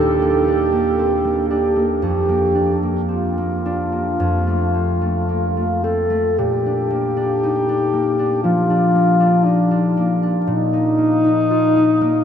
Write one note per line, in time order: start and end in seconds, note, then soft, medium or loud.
0.00 2.07 D#2 soft
0.00 0.21 A#3 soft
0.00 0.47 D4 soft
0.00 1.46 G4 medium
0.22 0.71 A#3 soft
0.48 1.49 D4 soft
0.72 1.23 A#3 soft
0.99 1.42 C4 soft
1.25 1.75 A#3 soft
1.49 2.54 D4 soft
1.49 1.86 G4 soft
1.76 2.28 A#3 soft
2.02 4.19 F2 soft
2.02 2.79 G4 medium
2.29 2.82 A#3 soft
2.55 3.64 D4 soft
2.83 3.36 A#3 soft
3.09 3.56 C4 soft
3.09 5.85 F4 soft
3.38 3.91 A#3 soft
3.65 4.25 D4 soft
3.92 4.25 A#3 soft
4.20 6.43 F2 soft
4.47 5.00 A3 soft
4.74 5.83 C4 soft
5.01 5.56 A3 soft
5.29 5.76 A#3 soft
5.57 6.09 A3 soft
5.84 6.43 C4 soft
5.84 6.40 A4 soft
6.10 6.42 A3 soft
6.38 10.28 A#2 soft
6.38 8.42 G4 medium
6.66 7.15 D4 soft
6.90 7.92 A#3 soft
7.17 7.68 D4 soft
7.43 7.87 D#4 soft
7.69 8.18 D4 soft
7.93 8.94 A#3 soft
8.19 8.69 D4 soft
8.43 10.50 F3 soft
8.43 9.46 F4 soft
8.70 9.19 D4 soft
8.95 9.96 A#3 soft
9.20 9.70 D4 soft
9.44 10.19 D4 soft
9.44 9.89 D#4 soft
9.71 10.21 D4 soft
9.97 10.97 A#3 soft
10.23 10.51 D4 soft
10.46 12.24 A#2 soft
10.46 12.24 D#4 medium
10.73 11.23 D#4 soft
10.98 12.00 A#3 soft
11.24 11.75 D#4 soft
11.50 11.94 F4 soft
11.76 12.24 D#4 soft
12.01 12.24 A#3 soft